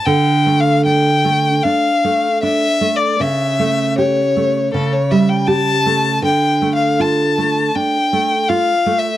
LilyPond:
<<
  \new Staff \with { instrumentName = "Violin" } { \time 4/4 \key d \minor \tempo 4 = 78 \tuplet 3/2 { g''4 f''8 } g''4 f''4 \tuplet 3/2 { e''4 d''8 } | e''4 cis''4 a'16 cis''16 e''16 g''16 a''4 | \tuplet 3/2 { g''4 f''8 } a''4 g''4 \tuplet 3/2 { f''4 e''8 } | }
  \new Staff \with { instrumentName = "Nylon-string guitar" } { \time 4/4 \key d \minor d8 a8 d'8 a8 d'8 a8 d'8 a8 | cis8 a8 g'8 a8 cis8 g8 g'8 a8 | d8 a8 f'8 a8 d'8 a8 f'8 a8 | }
>>